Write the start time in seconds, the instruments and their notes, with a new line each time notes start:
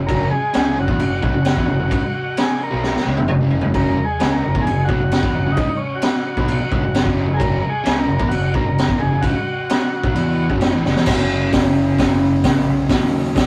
0.07 picked electric bass F#1, distorted electric guitar F#2 C#3 F#3, transistor combo organ A#4, kick, crash
0.31 transistor combo organ G#4, muted picked electric bass stroke, muted distorted electric guitar stroke
0.54 picked electric bass C#2, distorted electric guitar C#3 G#3 C#4, snare, crash
0.77 picked electric bass F#1, distorted electric guitar F#2 C#3, transistor combo organ F#4
0.88 picked electric bass E2, distorted electric guitar E3 B3, kick
0.99 picked electric bass F#1, distorted electric guitar F#2 C#3, crash
1.22 picked electric bass B1, distorted electric guitar B2 F#3, transistor combo organ F#4, kick
1.34 picked electric bass F#1, distorted electric guitar F#2 C#3
1.45 snare, crash
1.57 picked electric bass E2, distorted electric guitar E3 B3, kick
1.68 picked electric bass F#1, distorted electric guitar F#2 C#3, transistor combo organ F#4
1.80 picked electric bass F#1, distorted electric guitar F#2 C#3
1.89 picked electric bass C#2, distorted electric guitar C#3 G#3, kick, crash
2.14 transistor combo organ F#4
2.37 transistor combo organ G#4, snare, crash
2.63 transistor combo organ A#4
2.70 picked electric bass B1, distorted electric guitar B2 F#3 B3
2.83 snare
2.94 muted distorted electric guitar stroke, muted picked electric bass stroke, snare
3.05 picked electric bass C#2, distorted electric guitar C#3 G#3
3.17 picked electric bass F#1, distorted electric guitar F#2 C#3, high tom
3.28 picked electric bass F#1, distorted electric guitar F#2 C#3, mid tom
3.40 picked electric bass F#1, distorted electric guitar F#2 C#3 F#3
3.50 floor tom
3.61 distorted electric guitar F#2 C#3, floor tom
3.65 picked electric bass F#1
3.74 picked electric bass F#1, distorted electric guitar F#2 C#3 F#3, transistor combo organ A#4, kick, crash
3.98 muted distorted electric guitar stroke
4.05 transistor combo organ G#4
4.19 picked electric bass C#2, distorted electric guitar C#3 G#3 C#4, snare, crash
4.30 transistor combo organ A#4
4.43 picked electric bass F#1, distorted electric guitar F#2 C#3
4.55 picked electric bass E2, distorted electric guitar E3 B3, kick
4.61 transistor combo organ G#4
4.67 picked electric bass F#1, distorted electric guitar F#2 C#3, crash
4.85 distorted electric guitar B2, transistor combo organ F#4
4.89 picked electric bass B1, distorted electric guitar F#3, kick
5.00 picked electric bass F#1, distorted electric guitar F#2 C#3
5.12 snare, crash
5.22 picked electric bass E2, distorted electric guitar E3 B3, kick
5.35 picked electric bass F#1, distorted electric guitar F#2 C#3
5.46 picked electric bass F#1, distorted electric guitar F#2 C#3
5.52 transistor combo organ D#4
5.57 picked electric bass C#2, distorted electric guitar C#3 G#3, kick, crash
5.77 transistor combo organ C#4
5.95 transistor combo organ F#4
6.02 snare, crash
6.37 picked electric bass B1, distorted electric guitar B2 F#3 B3, kick
6.48 crash
6.59 muted distorted electric guitar stroke
6.72 picked electric bass C#2, distorted electric guitar C#3 G#3, kick
6.82 picked electric bass F#1, distorted electric guitar F#2 C#3
6.94 picked electric bass F#1, distorted electric guitar F#2 C#3, snare, crash
7.03 picked electric bass F#1, distorted electric guitar F#2 C#3 F#3, kick
7.27 picked electric bass F#1, distorted electric guitar F#2 C#3
7.34 transistor combo organ G#4 A#4
7.39 picked electric bass F#1, distorted electric guitar F#2 C#3 F#3, kick, crash
7.61 transistor combo organ A#4, muted distorted electric guitar stroke
7.69 transistor combo organ G#4
7.84 picked electric bass C#2, distorted electric guitar C#3 G#3 C#4, snare, crash
7.99 transistor combo organ A#4
8.06 picked electric bass F#1, distorted electric guitar F#2 C#3
8.18 picked electric bass E2, distorted electric guitar E3 B3, kick
8.28 picked electric bass F#1, distorted electric guitar F#2 C#3, transistor combo organ F#4, crash
8.54 picked electric bass B1, distorted electric guitar B2 F#3, transistor combo organ A#4, kick
8.65 picked electric bass F#1, distorted electric guitar F#2 C#3
8.78 snare, crash
8.88 picked electric bass E2, distorted electric guitar E3 B3, kick
8.99 picked electric bass F#1, distorted electric guitar F#2 C#3, transistor combo organ G#4
9.11 picked electric bass F#1, distorted electric guitar F#2 C#3
9.21 picked electric bass C#2, distorted electric guitar C#3 G#3, transistor combo organ F#4, kick, crash
9.70 snare, crash
10.04 picked electric bass B1, distorted electric guitar B2 F#3, kick
10.15 picked electric bass E2, distorted electric guitar E3 B3 E4, crash
10.50 picked electric bass F#1, distorted electric guitar F#2 C#3 F#3, kick
10.61 snare, crash
10.72 picked electric bass A1, distorted electric guitar A2 E3
10.83 picked electric bass F#1, distorted electric guitar F#2 C#3, snare
10.95 picked electric bass E1, distorted electric guitar E2 B2, snare
11.06 picked electric bass F#1, distorted electric guitar F#2 C#3, kick, snare, crash
11.11 distorted electric guitar F#3
11.53 picked electric bass F#1, kick, snare, open hi-hat
11.98 picked electric bass F#1, kick, snare, open hi-hat
12.44 picked electric bass A#1, kick, snare, open hi-hat
12.69 picked electric bass B1
12.89 picked electric bass D#2, distorted electric guitar F#2 C#3 F#3, kick, snare, open hi-hat
13.36 picked electric bass F#2, kick, snare, open hi-hat